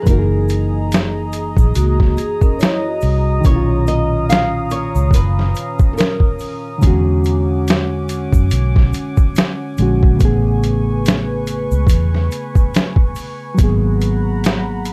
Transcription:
Already playing: G#4 A#5
0.02 F#2 E3 B4 D#5
0.06 F#1 A#3 D#4 A#4 D#6, kick, closed hi-hat, shaker
0.12 F#4
0.19 G#4
0.49 closed hi-hat, shaker
0.92 snare, closed hi-hat, shaker
1.33 closed hi-hat, shaker
1.57 A#1, kick, shaker
1.75 C#2 A#3 F#4, closed hi-hat, shaker
2.00 kick, snare
2.17 G#4, closed hi-hat, shaker
2.41 C#4 A#4, kick, shaker
2.58 E4 C#5, closed hi-hat, shaker
2.63 snare
2.83 F#4 D#5
3.01 C2, open hi-hat, shaker
3.41 A#2 D#3 C#4 F5, shaker
3.45 B1 C#4 C#5, kick, closed hi-hat
3.50 E4
3.56 F4
3.87 D#5, closed hi-hat, shaker
4.29 F5, snare, closed hi-hat, shaker
4.71 C#5, closed hi-hat, shaker
4.95 C#2, shaker
5.11 F#1 B4, kick, closed hi-hat, shaker
5.39 snare
5.55 closed hi-hat, shaker
5.79 kick, shaker
5.93 A4
5.97 A#4, snare, closed hi-hat, shaker
6.20 kick
6.39 open hi-hat, shaker
6.78 D3 G#3 F#5 G#5, shaker
6.82 E2 C#4 G#4 D6, kick, closed hi-hat
6.87 F#4
7.24 closed hi-hat, shaker
7.67 snare, closed hi-hat, shaker
8.09 closed hi-hat, shaker
8.33 F#2, kick, shaker
8.51 B1, closed hi-hat, shaker
8.76 kick, snare
8.93 closed hi-hat, shaker
9.17 kick, shaker
9.36 snare, closed hi-hat, shaker
9.77 A#1 D3 G#3 C#4, closed hi-hat, shaker
9.82 F#4
10.03 kick
10.16 C#3 A3, shaker
10.20 A1 B3 B4 C#6, kick, closed hi-hat
10.25 G#4
10.63 closed hi-hat, shaker
11.06 snare, closed hi-hat, shaker
11.47 closed hi-hat, shaker
11.71 C#2, shaker
11.87 E2, kick, closed hi-hat, shaker
12.15 snare
12.31 closed hi-hat, shaker
12.55 kick, shaker
12.74 snare, closed hi-hat, shaker
12.96 kick
13.15 open hi-hat, shaker
13.54 F#3 A#3 A#5, shaker
13.59 G#1 B3 F#5 B5, kick, closed hi-hat
13.64 G#4
14.01 closed hi-hat, shaker
14.44 snare, closed hi-hat, shaker
14.85 closed hi-hat, shaker

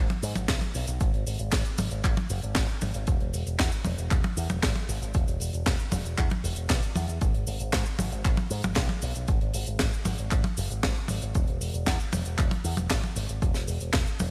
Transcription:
0.10 closed hi-hat, high tom
0.22 G#2, open hi-hat, cabasa
0.36 G#1, closed hi-hat, high tom, cabasa
0.48 B1, kick, snare, clap, closed hi-hat, cabasa
0.61 closed hi-hat, high tom
0.75 B1, open hi-hat, cabasa
0.87 B1, closed hi-hat, cabasa
1.00 G#1, kick, closed hi-hat, cabasa
1.13 G#1, closed hi-hat
1.26 G#1, open hi-hat, cabasa
1.39 G#1, closed hi-hat, cabasa
1.52 G#1, kick, snare, clap, closed hi-hat, cabasa
1.65 closed hi-hat, cabasa
1.78 G#1, open hi-hat, high tom, cabasa
1.91 G#1, closed hi-hat, cabasa
2.04 G#1, kick, clap, closed hi-hat, cabasa
2.17 closed hi-hat, high tom
2.30 F#1, open hi-hat, cabasa
2.42 G#1, closed hi-hat, cabasa
2.55 G#1, kick, snare, clap, closed hi-hat, cabasa
2.69 closed hi-hat
2.81 G#1, open hi-hat, high tom, cabasa
2.94 G#1, closed hi-hat, cabasa
3.07 E1, kick, closed hi-hat, cabasa
3.20 E1, closed hi-hat
3.33 E1, open hi-hat, cabasa
3.46 E1, closed hi-hat, cabasa
3.59 E2, kick, snare, clap, closed hi-hat, cabasa
3.72 closed hi-hat, cabasa
3.85 E1, open hi-hat, high tom, cabasa
3.98 E1, closed hi-hat, cabasa
4.11 E1, kick, clap, closed hi-hat, cabasa
4.24 closed hi-hat, high tom
4.37 E2, open hi-hat, cabasa
4.50 E1, closed hi-hat, high tom, cabasa
4.63 G#1, kick, snare, clap, closed hi-hat, cabasa
4.76 closed hi-hat, high tom
4.89 G#1, open hi-hat, cabasa
5.01 G#1, closed hi-hat, cabasa
5.14 E1, kick, closed hi-hat, cabasa
5.27 E1, closed hi-hat, cabasa
5.40 E1, open hi-hat, cabasa
5.53 E1, closed hi-hat, cabasa
5.66 E1, kick, snare, clap, closed hi-hat, cabasa
5.79 closed hi-hat, cabasa
5.91 E1, open hi-hat, high tom, cabasa
6.05 E1, closed hi-hat, cabasa
6.17 E2, kick, clap, closed hi-hat, cabasa
6.30 closed hi-hat, high tom
6.44 E1, open hi-hat, cabasa
6.56 E1, closed hi-hat, cabasa
6.69 B1, kick, snare, clap, closed hi-hat, cabasa
6.82 closed hi-hat, cabasa
6.95 E2, open hi-hat, high tom, cabasa
7.08 E2, closed hi-hat, cabasa
7.21 G#1, kick, closed hi-hat, cabasa
7.34 G#1, closed hi-hat
7.47 G#1, open hi-hat, cabasa
7.59 G#1, closed hi-hat, cabasa
7.73 G#2, kick, snare, clap, closed hi-hat, cabasa
7.86 closed hi-hat, cabasa
7.99 G#1, open hi-hat, high tom, cabasa
8.12 G#1, closed hi-hat, cabasa
8.25 G#1, kick, clap, closed hi-hat, cabasa
8.37 closed hi-hat, high tom
8.51 G#2, open hi-hat, cabasa
8.62 G#1, closed hi-hat, high tom, cabasa
8.75 B1, kick, snare, clap, closed hi-hat, cabasa
8.89 closed hi-hat, high tom
9.02 B1, open hi-hat, cabasa
9.15 B1, closed hi-hat, cabasa
9.28 G#1, kick, closed hi-hat, cabasa
9.41 G#1, closed hi-hat
9.54 G#1, open hi-hat, cabasa
9.66 G#1, closed hi-hat, cabasa
9.79 G#1, kick, snare, clap, closed hi-hat, cabasa
9.93 closed hi-hat, cabasa
10.05 G#1, open hi-hat, high tom, cabasa
10.18 G#1, closed hi-hat, cabasa
10.31 G#1, kick, clap, closed hi-hat, cabasa
10.44 closed hi-hat, high tom
10.57 F#1, open hi-hat, cabasa
10.70 G#1, closed hi-hat, cabasa
10.83 G#1, kick, snare, clap, closed hi-hat, cabasa
10.96 closed hi-hat
11.08 G#1, open hi-hat, high tom, cabasa
11.22 G#1, closed hi-hat, cabasa
11.35 E1, kick, closed hi-hat, cabasa
11.47 E1, closed hi-hat
11.61 E1, open hi-hat, cabasa
11.74 E1, closed hi-hat, cabasa
11.86 E2, kick, snare, clap, closed hi-hat, cabasa
11.99 closed hi-hat, cabasa
12.12 E1, open hi-hat, high tom, cabasa
12.25 E1, closed hi-hat, cabasa
12.38 E1, kick, clap, closed hi-hat, cabasa
12.51 closed hi-hat, high tom
12.64 E2, open hi-hat, cabasa
12.77 E1, closed hi-hat, high tom, cabasa
12.90 G#1, kick, snare, clap, closed hi-hat, cabasa
13.04 closed hi-hat, high tom
13.16 G#1, open hi-hat, cabasa
13.29 G#1, closed hi-hat, cabasa
13.42 E1, kick, closed hi-hat, cabasa
13.54 E1, snare, closed hi-hat, cabasa
13.67 E1, open hi-hat, cabasa
13.80 E1, closed hi-hat, cabasa
13.93 E1, kick, snare, clap, closed hi-hat, cabasa
14.06 closed hi-hat, cabasa
14.19 E1, open hi-hat, high tom, cabasa

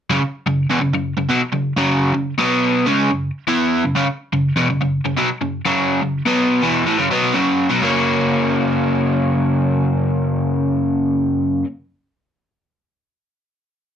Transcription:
0.10 F#2 C#3
0.21 muted overdriven electric guitar stroke
0.46 F#2 C#3
0.70 E2 B2
0.82 F#2 C#3
0.94 F#2 C#3
1.18 F#2 C#3
1.30 B2 F#3
1.41 muted overdriven electric guitar stroke
1.53 F#2 C#3
1.77 F#2 C#3 F#3
2.14 F#2 C#3
2.38 B2 F#3 B3
2.86 C#3 G#3 C#4
3.11 F#2 C#3
3.47 E3 B3 E4
3.84 F#2 C#3
3.95 F#2 C#3
4.08 muted overdriven electric guitar stroke
4.33 F#2 C#3
4.56 E2 B2
4.70 F#2 C#3
4.81 F#2 C#3
5.05 F#2 C#3
5.17 B2 F#3
5.29 muted overdriven electric guitar stroke
5.41 F#2 C#3
5.65 F#2 C#3 F#3
6.02 F#2 C#3
6.25 B2 F#3 B3
6.62 E2 B2 E3
6.86 A2 E3
6.98 F#2 C#3
7.10 B2 F#3 B3
7.34 F#2 C#3 F#3
7.70 B2 F#3
7.81 F#2 C#3 F#3 A#3 C#4

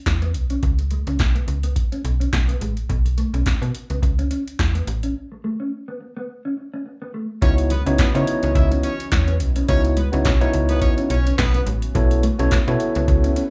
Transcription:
0.06 E2, kick, snare, clap, closed hi-hat
0.22 B3, closed hi-hat
0.34 B1, muted clean electric guitar stroke, closed hi-hat
0.50 C#4, closed hi-hat
0.63 C#2, kick, closed hi-hat
0.79 muted clean electric guitar stroke, closed hi-hat
0.91 G#3, closed hi-hat
1.07 C#2 C#4, closed hi-hat
1.19 B1, kick, snare, clap, closed hi-hat
1.35 B3, closed hi-hat
1.48 C#2, muted clean electric guitar stroke, closed hi-hat
1.63 B3, closed hi-hat
1.76 kick, closed hi-hat
1.92 C#4, closed hi-hat
2.04 B1, muted clean electric guitar stroke, closed hi-hat
2.20 C#4, closed hi-hat
2.32 B1, muted clean electric guitar stroke, kick, snare, clap, closed hi-hat
2.48 B3, closed hi-hat
2.61 A1 G#3, closed hi-hat
2.77 closed hi-hat
2.90 B1, kick, closed hi-hat
3.05 muted clean electric guitar stroke, closed hi-hat
3.18 A3, closed hi-hat
3.34 B1 C#4, closed hi-hat
3.46 B2, kick, snare, clap, closed hi-hat
3.62 B2 B3, closed hi-hat
3.74 muted clean electric guitar stroke, closed hi-hat
3.90 C#2 B3, closed hi-hat
4.03 C#2, muted clean electric guitar stroke, kick, closed hi-hat
4.19 C#4, closed hi-hat
4.31 C#4, closed hi-hat
4.48 closed hi-hat
4.59 E2, kick, snare, clap, closed hi-hat
4.75 B3, closed hi-hat
4.87 A1, muted clean electric guitar stroke, closed hi-hat
5.03 C#4, closed hi-hat
5.32 muted clean electric guitar stroke
5.44 A3
5.60 C#4
5.88 B3
6.01 muted clean electric guitar stroke
6.17 B3
6.45 C#4
6.57 muted clean electric guitar stroke
6.74 C#4
6.86 muted clean electric guitar stroke
7.02 B3
7.14 A3
7.42 C#2 C#3 E3 F#3 B3 C#4 D#4 E4 F#4 C#5 D#5, kick, closed hi-hat
7.58 muted clean electric guitar stroke, closed hi-hat
7.70 G#3 B3 B4, closed hi-hat
7.86 C#2 B3 C#4 D#4 E4 F#4 C#5, closed hi-hat
7.98 C#3 B3 B4, kick, snare, clap, closed hi-hat
8.14 C#3 B3 C#4 D#4 E4 F#4 C5 C#5, closed hi-hat
8.22 C#5
8.27 muted clean electric guitar stroke, closed hi-hat
8.43 C#2 B3 C#4 C#5, closed hi-hat
8.55 C#2 E4 E5, muted clean electric guitar stroke, kick, closed hi-hat
8.71 C#4, closed hi-hat
8.83 C#4 C#5, closed hi-hat
9.00 closed hi-hat
9.12 E2 C#4 C#5, kick, snare, clap, closed hi-hat
9.28 B3, closed hi-hat
9.40 B1, muted clean electric guitar stroke, closed hi-hat
9.56 C#4, closed hi-hat
9.68 C#2 B3 C#4 D#4 E4 F#4 C#5, kick, closed hi-hat
9.85 muted clean electric guitar stroke, closed hi-hat
9.97 G#3 B3 B4, closed hi-hat
10.12 C#2 B3 C#4 D#4 E4 F#4 C#5, closed hi-hat
10.25 B1 C#4 C#5, kick, snare, clap, closed hi-hat
10.41 B3 C#4 D#4 E4 F#4 C#5, closed hi-hat
10.53 C#2, muted clean electric guitar stroke, closed hi-hat
10.69 B3 B4, closed hi-hat
10.82 C#4 C#5, kick, closed hi-hat
10.98 C#4, closed hi-hat
11.10 B1 C#4 C#5, closed hi-hat
11.26 C#4, closed hi-hat
11.38 B1 B3 B4, muted clean electric guitar stroke, kick, snare, clap, closed hi-hat
11.54 B3, closed hi-hat
11.66 A1 G#3, closed hi-hat
11.82 closed hi-hat
11.95 B1 F#3 A3 B3 E4 F#4 A4 C#5, kick, closed hi-hat
12.11 muted clean electric guitar stroke, closed hi-hat
12.23 A3, closed hi-hat
12.39 B1 B3 C#4 E4 F#4 A4 C#5, closed hi-hat
12.51 kick, snare, clap, closed hi-hat
12.67 B2 B3 E4 F#4 A4 C#5, closed hi-hat
12.80 muted clean electric guitar stroke, closed hi-hat
12.95 C#2 B3, closed hi-hat
13.08 C#2, muted clean electric guitar stroke, kick, closed hi-hat
13.24 C#4, closed hi-hat
13.36 C#4, closed hi-hat

